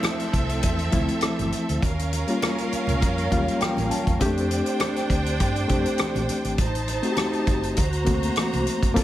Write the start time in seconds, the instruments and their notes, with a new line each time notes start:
Already playing: reed electric piano F3 A3 C4 E4, string section C4 A4 E5
0.03 cross-stick, closed hi-hat, high conga
0.20 closed hi-hat
0.33 fingered electric bass C2, kick, closed hi-hat
0.49 closed hi-hat
0.63 fingered electric bass E2, kick, closed hi-hat, muted conga
0.79 closed hi-hat
0.92 fingered electric bass D2, reed electric piano F3 A3 C4 E4, kick, closed hi-hat, low conga
1.08 closed hi-hat
1.21 muted fingered electric bass stroke, cross-stick, closed hi-hat, high conga
1.39 fingered electric bass G1, closed hi-hat, high conga
1.52 closed hi-hat
1.69 fingered electric bass D2, closed hi-hat
1.82 fingered electric bass D#2, string section C#4 A#4 F5, kick, closed hi-hat, muted conga
1.99 closed hi-hat
2.13 closed hi-hat, muted conga
2.27 reed electric piano G3 A#3 C#4 F4, closed hi-hat
2.42 cross-stick, closed hi-hat, high conga
2.58 closed hi-hat
2.72 muted fingered electric bass stroke, closed hi-hat
2.87 fingered electric bass C#2, closed hi-hat, low conga
3.02 fingered electric bass F2, kick, closed hi-hat, muted conga
3.18 closed hi-hat
3.30 fingered electric bass D#2, reed electric piano F#3 A#3 C#4 F4 F5, kick, closed hi-hat, low conga
3.36 reed electric piano G3
3.48 closed hi-hat
3.61 reed electric piano G5, muted fingered electric bass stroke, cross-stick, closed hi-hat, high conga
3.77 fingered electric bass A1, closed hi-hat, high conga
3.91 reed electric piano A5, closed hi-hat
4.07 fingered electric bass E2, kick, closed hi-hat
4.19 fingered electric bass F2, reed electric piano G#3 C4 D4 G4, string section D4 C5 G5, kick, closed hi-hat, muted conga
4.26 reed electric piano A3
4.37 closed hi-hat
4.51 closed hi-hat
4.66 closed hi-hat
4.80 cross-stick, closed hi-hat, high conga
4.96 cross-stick, closed hi-hat
5.10 fingered electric bass D2, kick, closed hi-hat
5.26 closed hi-hat
5.40 fingered electric bass G2, kick, closed hi-hat, muted conga
5.56 closed hi-hat
5.68 fingered electric bass F2, reed electric piano A3 C4 D4 G4, kick, closed hi-hat, low conga
5.86 closed hi-hat
5.98 muted fingered electric bass stroke, cross-stick, closed hi-hat, high conga
6.15 fingered electric bass A#1, closed hi-hat, high conga
6.29 closed hi-hat
6.44 fingered electric bass G#1, closed hi-hat
6.58 fingered electric bass A1, string section D#4 C5 A5, kick, closed hi-hat, muted conga
6.75 closed hi-hat
6.88 closed hi-hat, muted conga
7.02 reed electric piano A3 C4 D#4 F#4, closed hi-hat
7.11 reed electric piano G4
7.17 cross-stick, closed hi-hat, high conga
7.33 closed hi-hat
7.47 fingered electric bass G1, kick, closed hi-hat
7.63 closed hi-hat
7.76 fingered electric bass D2, string section F#4 C5 A#5, kick, closed hi-hat, muted conga
7.93 closed hi-hat
8.04 reed electric piano A3 A#3 C4 F#4, kick, closed hi-hat, low conga
8.23 closed hi-hat
8.36 muted fingered electric bass stroke, cross-stick, closed hi-hat, high conga
8.53 fingered electric bass C2, closed hi-hat, high conga
8.67 closed hi-hat
8.83 fingered electric bass F#1, kick, closed hi-hat
8.94 fingered electric bass G1, reed electric piano A#3 C4 F4 A4, string section F4 D5 A5, kick, closed hi-hat, muted conga